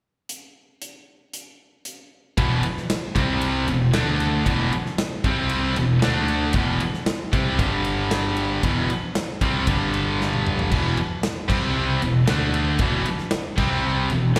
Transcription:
0.29 closed hi-hat
0.82 closed hi-hat
1.33 closed hi-hat
1.85 closed hi-hat
2.38 picked electric bass E1, distorted electric guitar E2 B2 E3, kick, ride
2.63 muted picked electric bass stroke, muted distorted electric guitar stroke, ride
2.77 snare
2.90 snare, ride
3.16 picked electric bass C2, distorted electric guitar C3 G3 C4, kick, snare, ride
3.41 ride
3.67 picked electric bass E1, distorted electric guitar E2 B2, ride
3.93 picked electric bass D2, distorted electric guitar D3 A3 D4, snare, ride
4.20 ride
4.45 picked electric bass E1, distorted electric guitar E2 B2 E3, kick, ride
4.72 muted distorted electric guitar stroke, ride
4.86 snare
4.98 snare, ride
5.24 picked electric bass C2, distorted electric guitar C3 G3 C4, kick, ride
5.49 ride
5.76 picked electric bass E1, distorted electric guitar E2 B2, ride
6.02 picked electric bass D2, distorted electric guitar D3 A3 D4, snare, ride
6.28 ride
6.53 picked electric bass E1, distorted electric guitar E2 B2 E3, kick, ride
6.80 muted picked electric bass stroke, muted distorted electric guitar stroke, ride
6.94 snare
7.06 snare, ride
7.32 picked electric bass C2, distorted electric guitar C3 G3 C4, kick, snare, ride
7.58 picked electric bass G1, distorted electric guitar G2 D3 G3, kick, ride
7.84 ride
8.11 snare, ride
8.36 ride
8.63 picked electric bass E1, distorted electric guitar E2 B2 E3, kick, ride
8.89 muted picked electric bass stroke, muted distorted electric guitar stroke, ride
9.15 snare, ride
9.41 picked electric bass C2, distorted electric guitar C3 G3 C4, kick, ride
9.67 picked electric bass G1, distorted electric guitar G2 D3 G3, kick, ride
9.94 ride
10.21 snare
10.34 high tom
10.47 mid tom
10.59 floor tom
10.71 picked electric bass E1, distorted electric guitar E2 B2 E3, kick, crash
10.97 muted picked electric bass stroke, muted distorted electric guitar stroke, ride
11.23 snare, ride
11.49 picked electric bass C2, distorted electric guitar C3 G3 C4, kick, snare, crash
12.02 picked electric bass E1, distorted electric guitar E2 B2, ride
12.28 picked electric bass D2, distorted electric guitar D3 A3 D4, snare, ride
12.54 ride
12.79 picked electric bass E1, distorted electric guitar E2 B2 E3, kick, ride
13.06 muted picked electric bass stroke, muted distorted electric guitar stroke, ride
13.18 snare
13.31 snare, ride
13.56 picked electric bass C2, distorted electric guitar C3 G3 C4, kick, crash
14.10 picked electric bass E1, distorted electric guitar E2 B2, ride
14.35 distorted electric guitar D3 A3, snare, ride

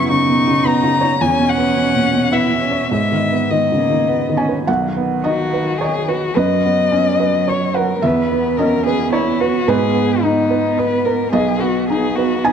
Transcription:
Already playing: felt piano F#2 C#3 B3, cello E4
0.09 felt piano C#3, cello D#4, violin C#6
0.29 felt piano B2
0.48 felt piano C#3
0.65 felt piano B3, violin A#5
0.84 felt piano C#3
1.01 felt piano C#5
1.21 felt piano E2, cello C#4, violin G#5
1.39 felt piano B2
1.49 violin F#5
1.58 felt piano B3
1.77 felt piano B2
1.95 felt piano A#2
2.14 felt piano B2
2.32 felt piano B3, cello E4, violin E5
2.51 felt piano B2
2.58 cello C#4
2.71 felt piano C#5
2.88 felt piano G#2, cello B3
2.93 violin E5
3.12 felt piano D#3
3.31 felt piano B3
3.50 felt piano D#3, cello G#3, violin D#5
3.72 felt piano C#3
3.77 cello A#3
3.90 felt piano D#3
4.08 cello B3, felt piano B3
4.30 felt piano D#3
4.36 cello C#4, felt piano G#5
4.49 felt piano B4
4.66 felt piano B1 F#5, cello D#3
4.96 felt piano B3
5.23 felt piano D#4 D#5, violin F#4
5.53 felt piano B4
5.78 violin G#4, felt piano C#5 D#5
6.08 violin F#4, felt piano B4
6.36 felt piano F#2 B4, cello F#3, violin D#5
6.65 felt piano B3
6.92 felt piano C#4
7.20 felt piano B4
7.48 felt piano C#5, violin C#5
7.74 violin A#4, felt piano B4 F#5
8.02 felt piano E2 E5, cello B3
8.06 violin B4
8.31 felt piano B3
8.57 felt piano C#4 D#5, violin A#4
8.86 violin G#4, felt piano B4
9.13 violin E4, felt piano C#5
9.40 violin F#4, felt piano B4
9.68 felt piano G#2 B4, violin G#4
9.95 felt piano B3
10.23 violin D#4, felt piano D#4
10.50 felt piano B4
10.78 violin B4, felt piano D#5
11.05 violin A#4, felt piano B4
11.32 felt piano B1 D#5, cello B3, violin G#4
11.60 felt piano B3, violin F#4
11.89 felt piano D#4, violin G#4
12.15 violin F#4, felt piano B4
12.44 violin D#4, felt piano D#5 G#5

